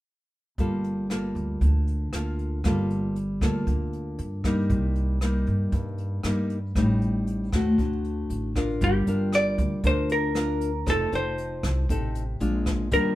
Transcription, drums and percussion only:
0.58 kick, closed hi-hat
0.84 closed hi-hat
1.10 cross-stick, closed hi-hat
1.36 closed hi-hat
1.61 kick, closed hi-hat
1.87 closed hi-hat
2.13 cross-stick, closed hi-hat
2.39 closed hi-hat
2.64 kick, cross-stick, closed hi-hat
2.90 closed hi-hat
3.16 closed hi-hat
3.41 kick, cross-stick, closed hi-hat
3.67 kick, closed hi-hat
3.93 closed hi-hat
4.19 closed hi-hat
4.44 kick, cross-stick, closed hi-hat
4.70 kick, closed hi-hat
4.96 closed hi-hat
5.21 cross-stick, closed hi-hat
5.47 closed hi-hat
5.72 kick, closed hi-hat
5.98 closed hi-hat
6.24 cross-stick, closed hi-hat
6.50 closed hi-hat
6.75 kick, cross-stick, closed hi-hat
7.02 closed hi-hat
7.27 closed hi-hat
7.53 kick, cross-stick, closed hi-hat
7.78 kick, closed hi-hat
8.04 closed hi-hat
8.30 closed hi-hat
8.55 kick, cross-stick, closed hi-hat
8.81 kick, closed hi-hat
9.07 closed hi-hat
9.33 cross-stick, closed hi-hat
9.58 kick, closed hi-hat
9.84 kick, closed hi-hat
10.09 closed hi-hat
10.35 cross-stick, closed hi-hat
10.61 closed hi-hat
10.87 kick, cross-stick, closed hi-hat
11.13 closed hi-hat
11.38 closed hi-hat
11.64 cross-stick, closed hi-hat
11.89 kick, closed hi-hat
12.15 closed hi-hat
12.41 closed hi-hat
12.66 kick, cross-stick, closed hi-hat
12.92 kick, closed hi-hat

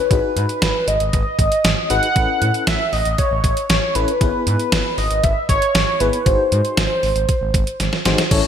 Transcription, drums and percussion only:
0.11 kick, closed hi-hat
0.37 closed hi-hat
0.49 closed hi-hat
0.62 snare, closed hi-hat
0.88 closed hi-hat
1.00 closed hi-hat
1.13 kick, closed hi-hat
1.39 kick, closed hi-hat
1.52 closed hi-hat
1.64 snare, closed hi-hat
1.90 closed hi-hat
2.03 closed hi-hat
2.16 kick, closed hi-hat
2.42 closed hi-hat
2.54 closed hi-hat
2.67 snare, closed hi-hat
2.93 open hi-hat
3.05 closed hi-hat
3.18 kick, closed hi-hat
3.44 kick, closed hi-hat
3.57 closed hi-hat
3.70 snare, closed hi-hat
3.95 closed hi-hat
4.08 closed hi-hat
4.21 kick, closed hi-hat
4.47 closed hi-hat
4.59 closed hi-hat
4.72 snare, closed hi-hat
4.98 open hi-hat
5.11 closed hi-hat
5.24 kick, closed hi-hat
5.49 kick, closed hi-hat
5.62 closed hi-hat
5.75 snare, closed hi-hat
6.00 closed hi-hat
6.13 closed hi-hat
6.26 kick, closed hi-hat
6.52 closed hi-hat
6.65 closed hi-hat
6.77 snare, closed hi-hat
7.03 open hi-hat
7.16 closed hi-hat
7.29 kick, closed hi-hat
7.54 kick, closed hi-hat
7.67 closed hi-hat
7.80 snare, closed hi-hat
7.93 snare
8.05 snare, closed hi-hat
8.18 snare, closed hi-hat
8.31 kick, closed hi-hat, crash

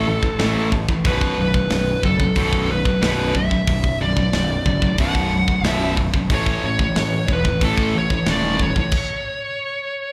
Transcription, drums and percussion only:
0.23 kick
0.39 snare, open hi-hat
0.72 kick
0.89 kick
1.05 kick, open hi-hat
1.21 kick
1.54 kick
1.70 snare, open hi-hat
2.03 kick
2.20 kick
2.35 kick, open hi-hat
2.53 kick
2.85 kick
3.02 snare, open hi-hat
3.35 kick
3.51 kick
3.67 kick, open hi-hat
3.84 kick
4.17 kick
4.33 snare, open hi-hat
4.66 kick
4.82 kick
4.98 kick, open hi-hat
5.15 kick
5.48 kick
5.64 snare, open hi-hat
5.97 kick
6.14 kick
6.30 kick, open hi-hat
6.46 kick
6.79 kick
6.96 snare, open hi-hat
7.28 kick
7.45 kick
7.61 kick, open hi-hat
7.77 kick
8.10 kick
8.26 snare, open hi-hat
8.59 kick
8.76 kick
8.91 kick, crash

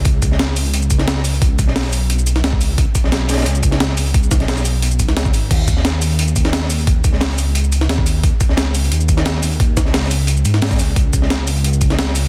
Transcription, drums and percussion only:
0.05 kick, closed hi-hat
0.22 kick, closed hi-hat, shaker
0.32 snare
0.39 snare, closed hi-hat
0.57 closed hi-hat, open hi-hat, shaker
0.65 closed hi-hat
0.74 closed hi-hat
0.82 shaker
0.90 kick, closed hi-hat, shaker
0.98 snare, closed hi-hat
1.08 snare, closed hi-hat
1.17 snare
1.24 closed hi-hat, open hi-hat, shaker
1.34 closed hi-hat
1.42 kick, closed hi-hat
1.59 kick, closed hi-hat, shaker
1.67 snare
1.76 snare, closed hi-hat, open hi-hat
1.84 snare
1.93 closed hi-hat, open hi-hat, shaker
2.10 closed hi-hat
2.19 shaker
2.27 closed hi-hat, shaker
2.36 snare, closed hi-hat
2.44 snare, closed hi-hat
2.53 kick
2.61 closed hi-hat, open hi-hat, shaker
2.78 kick, closed hi-hat
2.95 kick, closed hi-hat, shaker
3.04 snare
3.12 snare, closed hi-hat
3.29 snare, closed hi-hat, open hi-hat, shaker
3.33 snare, closed hi-hat
3.38 snare, closed hi-hat
3.42 snare, closed hi-hat
3.46 closed hi-hat
3.55 shaker
3.63 kick, closed hi-hat, shaker
3.71 snare, closed hi-hat
3.80 snare, closed hi-hat
3.89 snare
3.97 closed hi-hat, open hi-hat, shaker
4.06 closed hi-hat
4.14 kick, closed hi-hat
4.23 shaker
4.31 kick, snare, closed hi-hat, shaker
4.40 snare, closed hi-hat
4.48 snare, closed hi-hat, open hi-hat
4.57 snare, shaker
4.65 closed hi-hat, open hi-hat, shaker
4.82 closed hi-hat
4.91 shaker
4.99 kick, closed hi-hat, shaker
5.08 snare, closed hi-hat
5.17 snare, closed hi-hat
5.25 kick, shaker
5.34 closed hi-hat, open hi-hat, shaker
5.51 kick, closed hi-hat, crash
5.68 kick, closed hi-hat, shaker
5.77 snare
5.85 snare, closed hi-hat
6.02 closed hi-hat, open hi-hat, shaker
6.11 closed hi-hat
6.19 closed hi-hat
6.28 shaker
6.36 kick, closed hi-hat, shaker
6.45 snare, closed hi-hat
6.53 snare, closed hi-hat
6.62 snare
6.70 closed hi-hat, open hi-hat, shaker
6.78 closed hi-hat
6.87 kick, closed hi-hat
7.04 kick, closed hi-hat, shaker
7.12 snare
7.21 snare, closed hi-hat, open hi-hat
7.30 snare
7.38 closed hi-hat, open hi-hat, shaker
7.55 closed hi-hat
7.64 shaker
7.72 closed hi-hat, shaker
7.81 snare, closed hi-hat
7.89 snare, closed hi-hat
7.98 kick
8.06 closed hi-hat, open hi-hat, shaker
8.23 kick, closed hi-hat
8.41 kick, closed hi-hat, shaker
8.49 snare
8.57 snare, closed hi-hat
8.75 closed hi-hat, open hi-hat, shaker
8.84 closed hi-hat
8.92 closed hi-hat
9.01 shaker
9.08 kick, closed hi-hat, shaker
9.17 snare, closed hi-hat
9.25 snare, closed hi-hat
9.35 snare
9.42 closed hi-hat, open hi-hat, shaker
9.51 closed hi-hat
9.60 kick, closed hi-hat
9.77 kick, snare, closed hi-hat, shaker
9.85 snare
9.94 snare, closed hi-hat, open hi-hat
10.03 snare
10.11 closed hi-hat, open hi-hat, shaker
10.27 closed hi-hat
10.37 shaker
10.45 closed hi-hat, shaker
10.54 snare, closed hi-hat
10.62 snare, closed hi-hat
10.66 snare, closed hi-hat
10.71 kick, snare, closed hi-hat, shaker
10.76 snare, closed hi-hat, open hi-hat, shaker
10.80 closed hi-hat
10.96 kick, closed hi-hat
11.13 kick, closed hi-hat, shaker
11.22 snare
11.30 snare, closed hi-hat
11.47 closed hi-hat, open hi-hat, shaker
11.56 closed hi-hat
11.64 closed hi-hat
11.73 shaker
11.81 kick, closed hi-hat, shaker
11.90 snare, closed hi-hat
11.99 snare, closed hi-hat
12.07 snare
12.15 closed hi-hat, open hi-hat, shaker
12.24 closed hi-hat

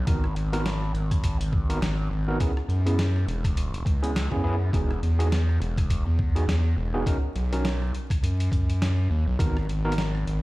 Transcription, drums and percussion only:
0.07 kick, closed hi-hat
0.24 cross-stick
0.36 closed hi-hat
0.53 closed hi-hat
0.66 snare, closed hi-hat
0.82 cross-stick
0.95 closed hi-hat
1.11 kick, cross-stick, closed hi-hat
1.24 kick, closed hi-hat
1.41 closed hi-hat
1.53 kick
1.70 closed hi-hat
1.82 snare, closed hi-hat
2.40 kick, closed hi-hat
2.57 cross-stick
2.70 closed hi-hat
2.87 closed hi-hat
2.99 snare, closed hi-hat
3.16 cross-stick
3.28 closed hi-hat
3.44 kick, cross-stick, closed hi-hat
3.57 closed hi-hat
3.74 closed hi-hat
3.86 kick, closed hi-hat
4.04 closed hi-hat
4.16 snare, closed hi-hat
4.32 kick
4.73 kick, closed hi-hat
4.91 cross-stick
5.03 closed hi-hat
5.20 closed hi-hat
5.32 snare, closed hi-hat
5.49 cross-stick
5.62 closed hi-hat
5.77 kick, cross-stick, closed hi-hat
5.90 kick, closed hi-hat
6.19 kick
6.36 closed hi-hat
6.49 snare, closed hi-hat
7.06 kick, closed hi-hat
7.36 closed hi-hat
7.53 closed hi-hat
7.65 snare, closed hi-hat
7.82 cross-stick
7.95 closed hi-hat
8.10 kick, cross-stick, closed hi-hat
8.24 closed hi-hat
8.40 closed hi-hat
8.52 kick, closed hi-hat
8.70 closed hi-hat
8.82 snare, closed hi-hat
9.39 kick, closed hi-hat
9.57 cross-stick
9.69 closed hi-hat
9.92 closed hi-hat
9.98 snare, closed hi-hat
10.15 cross-stick
10.27 closed hi-hat

